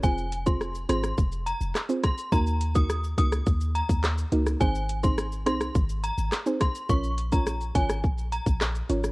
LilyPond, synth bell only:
\new Staff \with { instrumentName = "Synth bell" } { \time 4/4 \key bes \minor \tempo 4 = 105 aes''8 r16 c'''16 r8 c'''16 r8. bes''16 r8. c'''16 r16 | bes''8 r16 ees'''16 r8 ees'''16 r8. bes''16 r4 r16 | aes''8 r16 c'''16 r8 c'''16 r8. bes''16 r8. c'''16 r16 | des'''8 r16 bes''16 r8 aes''16 r8. bes''16 r4 r16 | }